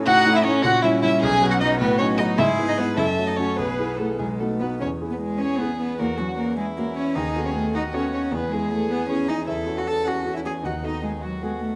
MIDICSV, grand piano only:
0, 0, Header, 1, 2, 480
1, 0, Start_track
1, 0, Key_signature, 4, "major"
1, 0, Tempo, 388853
1, 65, Time_signature, 6, 3, 24, 8
1, 2946, Tempo, 400802
1, 7266, Tempo, 387097
1, 14411, End_track
2, 0, Start_track
2, 0, Title_t, "Grand piano"
2, 0, Program_c, 0, 0
2, 0, Control_c, 0, 64, 127
2, 86, Note_on_c, 0, 45, 92
2, 91, Control_c, 0, 64, 0
2, 276, Control_c, 0, 64, 127
2, 308, Note_off_c, 0, 45, 0
2, 317, Note_on_c, 0, 57, 69
2, 319, Note_on_c, 0, 61, 64
2, 327, Note_on_c, 0, 64, 83
2, 526, Note_off_c, 0, 57, 0
2, 527, Note_off_c, 0, 61, 0
2, 531, Note_off_c, 0, 64, 0
2, 544, Note_on_c, 0, 57, 61
2, 551, Note_on_c, 0, 64, 69
2, 553, Note_on_c, 0, 61, 64
2, 757, Note_off_c, 0, 57, 0
2, 761, Note_off_c, 0, 64, 0
2, 762, Note_off_c, 0, 61, 0
2, 790, Note_on_c, 0, 46, 93
2, 805, Control_c, 0, 64, 0
2, 979, Control_c, 0, 64, 127
2, 1017, Note_off_c, 0, 46, 0
2, 1036, Note_on_c, 0, 55, 62
2, 1038, Note_on_c, 0, 61, 72
2, 1051, Note_on_c, 0, 64, 74
2, 1245, Note_off_c, 0, 55, 0
2, 1246, Note_off_c, 0, 61, 0
2, 1253, Note_off_c, 0, 64, 0
2, 1269, Note_on_c, 0, 55, 69
2, 1272, Note_on_c, 0, 61, 71
2, 1273, Note_on_c, 0, 64, 79
2, 1480, Note_off_c, 0, 55, 0
2, 1482, Note_off_c, 0, 61, 0
2, 1483, Note_off_c, 0, 64, 0
2, 1517, Note_on_c, 0, 35, 94
2, 1522, Control_c, 0, 64, 0
2, 1703, Control_c, 0, 64, 127
2, 1740, Note_off_c, 0, 35, 0
2, 1741, Note_on_c, 0, 54, 73
2, 1749, Note_on_c, 0, 59, 68
2, 1755, Note_on_c, 0, 66, 75
2, 1955, Note_off_c, 0, 54, 0
2, 1960, Note_off_c, 0, 59, 0
2, 1963, Note_off_c, 0, 66, 0
2, 1998, Note_on_c, 0, 54, 61
2, 2001, Note_on_c, 0, 66, 65
2, 2003, Note_on_c, 0, 59, 67
2, 2205, Note_off_c, 0, 54, 0
2, 2207, Note_off_c, 0, 66, 0
2, 2208, Note_off_c, 0, 59, 0
2, 2229, Note_on_c, 0, 45, 95
2, 2242, Control_c, 0, 64, 0
2, 2417, Control_c, 0, 64, 127
2, 2457, Note_on_c, 0, 54, 65
2, 2458, Note_off_c, 0, 45, 0
2, 2466, Note_on_c, 0, 63, 74
2, 2470, Note_on_c, 0, 59, 63
2, 2677, Note_off_c, 0, 54, 0
2, 2682, Note_off_c, 0, 63, 0
2, 2684, Note_off_c, 0, 59, 0
2, 2704, Note_on_c, 0, 59, 70
2, 2705, Note_on_c, 0, 54, 70
2, 2717, Note_on_c, 0, 63, 74
2, 2923, Note_off_c, 0, 59, 0
2, 2924, Note_off_c, 0, 54, 0
2, 2930, Note_off_c, 0, 63, 0
2, 2946, Note_on_c, 0, 44, 88
2, 2972, Control_c, 0, 64, 0
2, 3171, Control_c, 0, 64, 127
2, 3176, Note_off_c, 0, 44, 0
2, 3183, Note_on_c, 0, 56, 61
2, 3196, Note_on_c, 0, 59, 63
2, 3196, Note_on_c, 0, 64, 68
2, 3398, Note_off_c, 0, 56, 0
2, 3405, Note_off_c, 0, 59, 0
2, 3405, Note_off_c, 0, 64, 0
2, 3428, Note_on_c, 0, 56, 47
2, 3438, Note_on_c, 0, 59, 55
2, 3442, Note_on_c, 0, 64, 57
2, 3641, Note_off_c, 0, 56, 0
2, 3646, Note_off_c, 0, 59, 0
2, 3649, Note_off_c, 0, 64, 0
2, 3649, Note_on_c, 0, 42, 75
2, 3683, Control_c, 0, 64, 0
2, 3889, Note_off_c, 0, 42, 0
2, 3896, Note_on_c, 0, 57, 52
2, 3905, Note_on_c, 0, 61, 51
2, 3907, Note_on_c, 0, 66, 52
2, 3920, Control_c, 0, 64, 127
2, 4117, Note_off_c, 0, 57, 0
2, 4122, Note_off_c, 0, 61, 0
2, 4123, Note_off_c, 0, 66, 0
2, 4135, Note_on_c, 0, 57, 52
2, 4142, Note_on_c, 0, 61, 56
2, 4149, Note_on_c, 0, 66, 61
2, 4359, Note_off_c, 0, 57, 0
2, 4363, Note_off_c, 0, 61, 0
2, 4367, Note_off_c, 0, 66, 0
2, 4384, Note_on_c, 0, 35, 65
2, 4415, Control_c, 0, 64, 0
2, 4623, Note_off_c, 0, 35, 0
2, 4625, Note_on_c, 0, 59, 51
2, 4627, Note_on_c, 0, 64, 54
2, 4636, Note_on_c, 0, 68, 54
2, 4639, Control_c, 0, 64, 127
2, 4839, Note_off_c, 0, 59, 0
2, 4848, Note_off_c, 0, 64, 0
2, 4854, Note_off_c, 0, 68, 0
2, 4857, Note_on_c, 0, 59, 46
2, 4866, Note_on_c, 0, 64, 43
2, 4872, Note_on_c, 0, 68, 51
2, 5085, Note_off_c, 0, 59, 0
2, 5090, Note_off_c, 0, 64, 0
2, 5093, Note_off_c, 0, 68, 0
2, 5111, Note_on_c, 0, 35, 62
2, 5144, Control_c, 0, 64, 0
2, 5352, Note_off_c, 0, 35, 0
2, 5353, Note_on_c, 0, 59, 50
2, 5361, Note_on_c, 0, 66, 50
2, 5365, Note_on_c, 0, 63, 50
2, 5389, Control_c, 0, 64, 127
2, 5576, Note_off_c, 0, 59, 0
2, 5584, Note_off_c, 0, 66, 0
2, 5586, Note_off_c, 0, 63, 0
2, 5594, Note_on_c, 0, 59, 51
2, 5609, Note_on_c, 0, 63, 53
2, 5610, Note_on_c, 0, 66, 58
2, 5819, Note_off_c, 0, 59, 0
2, 5827, Note_off_c, 0, 63, 0
2, 5828, Note_off_c, 0, 66, 0
2, 5850, Note_on_c, 0, 40, 62
2, 5874, Control_c, 0, 64, 0
2, 6081, Note_off_c, 0, 40, 0
2, 6089, Note_on_c, 0, 59, 49
2, 6090, Note_on_c, 0, 64, 45
2, 6095, Note_on_c, 0, 68, 50
2, 6112, Control_c, 0, 64, 127
2, 6750, Note_off_c, 0, 59, 0
2, 6750, Note_off_c, 0, 64, 0
2, 6753, Note_off_c, 0, 68, 0
2, 6804, Note_on_c, 0, 59, 42
2, 6807, Note_on_c, 0, 64, 43
2, 6815, Note_on_c, 0, 68, 47
2, 7224, Note_off_c, 0, 59, 0
2, 7226, Note_off_c, 0, 64, 0
2, 7230, Note_off_c, 0, 68, 0
2, 7267, Note_on_c, 0, 40, 62
2, 7290, Control_c, 0, 64, 0
2, 7502, Note_off_c, 0, 40, 0
2, 7515, Note_on_c, 0, 61, 47
2, 7518, Control_c, 0, 64, 127
2, 7519, Note_on_c, 0, 66, 51
2, 8189, Note_off_c, 0, 61, 0
2, 8190, Note_off_c, 0, 66, 0
2, 8238, Note_on_c, 0, 61, 44
2, 8238, Note_on_c, 0, 66, 47
2, 8671, Note_off_c, 0, 61, 0
2, 8671, Note_off_c, 0, 66, 0
2, 8711, Note_on_c, 0, 39, 69
2, 8741, Control_c, 0, 64, 0
2, 8940, Control_c, 0, 64, 127
2, 8948, Note_off_c, 0, 39, 0
2, 8955, Note_on_c, 0, 59, 48
2, 8960, Note_on_c, 0, 66, 49
2, 8963, Note_on_c, 0, 69, 49
2, 9626, Note_off_c, 0, 59, 0
2, 9629, Note_off_c, 0, 66, 0
2, 9630, Note_off_c, 0, 69, 0
2, 9674, Note_on_c, 0, 59, 47
2, 9678, Note_on_c, 0, 66, 48
2, 9686, Note_on_c, 0, 69, 48
2, 10103, Note_off_c, 0, 59, 0
2, 10105, Note_off_c, 0, 66, 0
2, 10110, Note_off_c, 0, 69, 0
2, 10148, Note_on_c, 0, 40, 65
2, 10176, Control_c, 0, 64, 0
2, 10355, Control_c, 0, 64, 127
2, 10382, Note_off_c, 0, 40, 0
2, 10403, Note_on_c, 0, 59, 44
2, 10404, Note_on_c, 0, 64, 45
2, 10409, Note_on_c, 0, 68, 50
2, 11062, Note_off_c, 0, 59, 0
2, 11062, Note_off_c, 0, 64, 0
2, 11065, Note_off_c, 0, 68, 0
2, 11106, Note_on_c, 0, 59, 49
2, 11111, Note_on_c, 0, 64, 47
2, 11115, Note_on_c, 0, 68, 46
2, 11536, Note_off_c, 0, 59, 0
2, 11538, Note_off_c, 0, 64, 0
2, 11540, Note_off_c, 0, 68, 0
2, 11587, Note_on_c, 0, 40, 60
2, 11606, Control_c, 0, 64, 0
2, 11790, Control_c, 0, 64, 127
2, 11813, Note_on_c, 0, 61, 44
2, 11817, Note_off_c, 0, 40, 0
2, 11821, Note_on_c, 0, 66, 45
2, 11825, Note_on_c, 0, 69, 52
2, 12484, Note_off_c, 0, 61, 0
2, 12488, Note_off_c, 0, 66, 0
2, 12490, Note_off_c, 0, 69, 0
2, 12545, Note_on_c, 0, 61, 42
2, 12547, Note_on_c, 0, 66, 44
2, 12553, Note_on_c, 0, 69, 44
2, 12976, Note_off_c, 0, 61, 0
2, 12977, Note_off_c, 0, 66, 0
2, 12980, Note_off_c, 0, 69, 0
2, 13018, Note_on_c, 0, 39, 51
2, 13044, Control_c, 0, 64, 0
2, 13235, Control_c, 0, 64, 127
2, 13253, Note_off_c, 0, 39, 0
2, 13256, Note_on_c, 0, 59, 39
2, 13258, Note_on_c, 0, 66, 36
2, 13265, Note_on_c, 0, 69, 41
2, 13933, Note_off_c, 0, 59, 0
2, 13934, Note_off_c, 0, 66, 0
2, 13937, Note_off_c, 0, 69, 0
2, 13998, Note_on_c, 0, 59, 33
2, 13999, Note_on_c, 0, 66, 33
2, 14007, Note_on_c, 0, 69, 41
2, 14411, Note_off_c, 0, 59, 0
2, 14411, Note_off_c, 0, 66, 0
2, 14411, Note_off_c, 0, 69, 0
2, 14411, End_track
0, 0, End_of_file